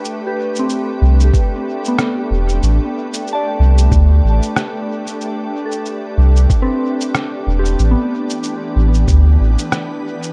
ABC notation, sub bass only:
X:1
M:4/4
L:1/8
Q:"Swing 16ths" 1/4=93
K:Am
V:1 name="Sub bass" clef=bass
z3 C,, z3 E,,, | A,,, z2 C,, D,, A,,, z2 | z3 C,, z3 E,,, | A,,, z2 A,,, D,, A,,, z2 |]